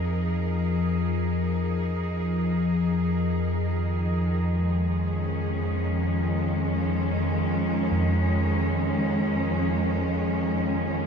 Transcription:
0.00 11.06 F2 medium
0.00 2.97 F3 medium
0.00 11.06 F3 medium
0.00 4.65 D#4 medium
0.00 6.36 G#4 medium
0.00 4.52 A#4 medium
2.96 11.06 F2 medium
3.65 11.06 D#3 medium
4.49 11.06 G#3 medium
4.89 11.06 C#4 medium
7.92 11.06 F2 medium

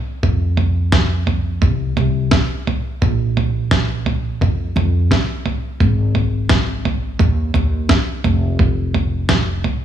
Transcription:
0.23 1.58 F2 loud
0.23 kick loud
0.23 floor tom medium
0.57 floor tom medium
0.92 kick loud
0.92 snare loud
0.92 floor tom medium
1.27 floor tom loud
1.62 1.94 C2 loud
1.62 kick loud
1.62 floor tom loud
1.97 2.29 C2 loud
1.97 floor tom loud
2.31 kick loud
2.31 snare loud
2.31 floor tom loud
2.67 floor tom loud
3.02 4.37 A#1 loud
3.02 kick loud
3.02 floor tom medium
3.37 floor tom medium
3.71 kick loud
3.71 snare loud
3.71 floor tom medium
4.06 floor tom loud
4.41 4.73 F2 medium
4.41 kick loud
4.41 floor tom loud
4.76 5.08 F2 loud
4.76 floor tom medium
5.11 kick loud
5.11 snare loud
5.11 floor tom loud
5.46 floor tom medium
5.80 7.16 G#1 loud
5.80 kick loud
5.80 floor tom medium
6.15 floor tom medium
6.49 kick loud
6.49 snare loud
6.49 floor tom medium
6.85 floor tom loud
7.19 7.52 D#2 loud
7.19 kick loud
7.19 floor tom medium
7.54 7.87 D#2 loud
7.54 floor tom loud
7.89 kick loud
7.89 snare loud
7.89 floor tom medium
8.24 9.61 F1 loud
8.24 floor tom loud
8.59 kick loud
8.59 floor tom medium
8.94 floor tom medium
9.29 kick loud
9.29 snare loud
9.29 floor tom medium
9.64 floor tom medium

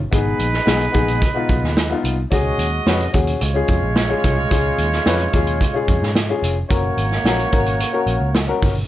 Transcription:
0.11 0.32 G#1 medium
0.11 2.01 G#3 medium
0.11 0.45 B3 medium
0.11 0.46 D#4 medium
0.11 2.02 D#4 medium
0.11 0.46 G#4 medium
0.11 2.01 B4 medium
0.11 kick medium
0.11 closed hi-hat medium
0.39 0.59 A#1 medium
0.39 closed hi-hat medium
0.53 snare soft
0.66 0.87 B1 medium
0.66 0.83 B3 medium
0.66 0.84 D#4 medium
0.66 0.84 G#4 medium
0.66 snare loud
0.66 closed hi-hat medium
0.80 closed hi-hat soft
0.92 1.24 A#1 medium
0.92 1.18 B3 medium
0.92 1.19 D#4 medium
0.92 1.19 G#4 medium
0.92 kick medium
0.92 closed hi-hat medium
1.08 closed hi-hat soft
1.22 kick medium
1.22 closed hi-hat medium
1.35 1.69 B3 medium
1.35 1.69 D#4 medium
1.35 1.69 F4 medium
1.49 1.59 B1 medium
1.49 kick medium
1.49 closed hi-hat medium
1.63 1.93 D#2 medium
1.63 snare soft
1.77 snare loud
1.77 closed hi-hat medium
1.90 2.15 B3 medium
1.90 2.16 D#4 medium
1.90 2.16 F4 medium
2.04 2.24 C2 medium
2.04 closed hi-hat medium
2.31 2.52 C#2 medium
2.31 3.12 G#3 medium
2.31 2.65 C#4 medium
2.31 3.12 F#4 medium
2.31 2.65 F#4 medium
2.31 2.66 G#4 medium
2.31 3.12 D#5 medium
2.31 kick loud
2.31 closed hi-hat medium
2.58 2.78 D#2 medium
2.58 closed hi-hat medium
2.86 3.06 F2 medium
2.86 3.03 C#4 medium
2.86 3.04 F#4 medium
2.86 3.04 B4 medium
2.86 snare medium
2.86 closed hi-hat medium
3.00 closed hi-hat soft
3.13 3.34 D#2 medium
3.13 3.38 C#4 medium
3.13 3.39 F#4 medium
3.13 3.39 G#4 medium
3.13 kick medium
3.13 closed hi-hat medium
3.27 closed hi-hat soft
3.41 3.61 C#2 loud
3.41 6.39 G#3 medium
3.41 6.39 F4 medium
3.41 6.39 C#5 medium
3.41 closed hi-hat medium
3.54 3.88 C#4 medium
3.54 3.89 F4 medium
3.54 3.89 G#4 medium
3.68 3.79 F2 medium
3.68 kick medium
3.68 closed hi-hat soft
3.83 4.13 A#1 medium
3.96 snare loud
3.96 closed hi-hat medium
4.09 4.34 C#4 medium
4.09 4.35 F4 medium
4.09 4.35 G#4 medium
4.23 4.44 C2 medium
4.23 kick medium
4.23 snare soft
4.23 closed hi-hat medium
4.50 4.71 C#2 medium
4.50 4.84 C#4 medium
4.50 4.84 F4 medium
4.50 4.85 G#4 medium
4.50 kick loud
4.50 closed hi-hat medium
4.78 4.98 D#2 medium
4.78 closed hi-hat medium
4.92 snare soft
5.06 5.26 F2 medium
5.06 5.23 C#4 medium
5.06 5.23 F4 medium
5.06 5.24 B4 medium
5.06 snare loud
5.06 closed hi-hat medium
5.20 closed hi-hat soft
5.33 5.64 D#2 medium
5.33 5.58 C#4 medium
5.33 5.59 F4 medium
5.33 5.59 G#4 medium
5.33 kick medium
5.33 closed hi-hat medium
5.47 closed hi-hat soft
5.61 kick medium
5.61 closed hi-hat medium
5.74 6.07 C#4 medium
5.74 6.08 F4 medium
5.74 6.08 G#4 medium
5.88 5.98 F2 medium
5.88 kick medium
5.88 closed hi-hat soft
6.02 6.32 G#2 medium
6.02 snare soft
6.15 snare loud
6.15 closed hi-hat medium
6.29 6.54 C#4 medium
6.29 6.55 F4 medium
6.29 6.55 G#4 medium
6.42 6.63 F1 medium
6.42 closed hi-hat medium
6.69 6.90 F#1 medium
6.69 8.58 A#3 medium
6.69 7.03 C#4 medium
6.69 7.03 F#4 medium
6.69 8.58 F#4 medium
6.69 7.04 A#4 medium
6.69 8.58 C#5 medium
6.69 kick loud
6.69 closed hi-hat medium
6.97 7.17 G#1 medium
6.97 closed hi-hat medium
7.12 snare soft
7.24 7.44 A#1 medium
7.24 7.42 C#4 medium
7.24 7.42 F#4 medium
7.24 7.43 A#4 medium
7.24 snare medium
7.24 closed hi-hat medium
7.39 closed hi-hat soft
7.51 7.82 G#1 medium
7.51 7.77 C#4 medium
7.51 7.77 F#4 medium
7.51 7.78 A#4 medium
7.51 kick medium
7.51 closed hi-hat medium
7.66 closed hi-hat soft
7.80 closed hi-hat medium
7.93 8.26 C#4 medium
7.93 8.27 F#4 medium
7.93 8.27 A#4 medium
8.06 8.17 A#1 medium
8.06 closed hi-hat soft
8.20 8.50 C#2 medium
8.35 snare loud
8.35 closed hi-hat medium
8.47 8.73 C#4 medium
8.47 8.73 F#4 medium
8.47 8.73 A#4 medium
8.62 8.82 G1 medium
8.62 kick medium
8.62 snare soft
8.62 open hi-hat medium

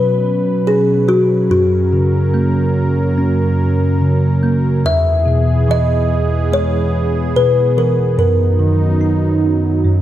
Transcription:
0.00 1.47 B2 soft
0.00 1.49 B2 medium
0.00 1.08 F#3 soft
0.00 4.81 F#3 medium
0.00 0.63 C#4 soft
0.00 4.82 C#4 medium
0.00 0.70 B4 medium
0.00 1.49 B4 medium
0.67 1.49 C#4 soft
0.67 0.86 G#4 medium
1.08 1.49 F#3 soft
1.08 1.50 F#4 medium
1.50 4.80 F#2 medium
1.50 4.81 F#2 medium
1.50 3.97 F#4 medium
1.50 4.81 A#4 medium
1.93 3.55 C#3 soft
2.34 3.97 A#3 soft
3.18 4.81 C#4 soft
4.01 4.82 C#3 soft
4.43 4.83 A#3 soft
4.85 8.14 E2 medium
4.85 8.15 E2 medium
4.85 8.15 E3 medium
4.85 9.81 B3 medium
4.85 8.15 G#4 medium
4.85 5.71 E5 loud
5.26 6.89 B2 soft
5.68 7.31 E3 soft
5.68 6.55 D#5 medium
6.52 8.14 G#3 soft
6.52 7.38 C#5 medium
7.36 8.16 B2 soft
7.36 7.78 B4 medium
7.77 8.17 E3 soft
7.77 8.16 A#4 medium
8.18 9.81 F#2 medium
8.18 10.02 F#2 medium
8.18 10.02 F#3 medium
8.18 9.83 D#4 medium
8.18 10.02 A#4 medium
8.59 9.81 D#3 soft
9.01 9.82 D#4 soft
9.84 10.02 F#2 soft
9.84 10.02 A#3 medium
9.84 10.02 C#4 medium

